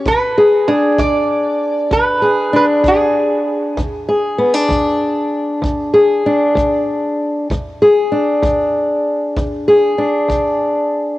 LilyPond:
<<
  \new Staff \with { instrumentName = "Resonator guitar played with a steel bar" } { \time 12/8 \key e \mixolydian \tempo 4. = 64 b'4 gis'8 d''4. b'4 b'8 gis'4.~ | gis'8 r1 r4. | r1. | }
  \new Staff \with { instrumentName = "Steel-string acoustic guitar" } { \time 12/8 \key e \mixolydian << { r8 gis'8 d'2~ d'8 gis'8 d'2 | r8 gis'8 b16 d'2~ d'16 gis'8 d'2 | r8 gis'8 d'2~ d'8 gis'8 d'2 | } \\ { e,4 r8 e,4 r8 e,4 r8 e,4 r8 | e,4 r8 e,4 r8 e,4 r8 e,4 r8 | e,4 r8 e,4 r8 e,4 r8 e,4 r8 | } >> }
  \new DrumStaff \with { instrumentName = "Drums" } \drummode { \time 12/8 bd4. bd4. bd4. bd4. | bd4. bd4. bd4. bd4. | bd4. bd4. bd4. bd4. | }
>>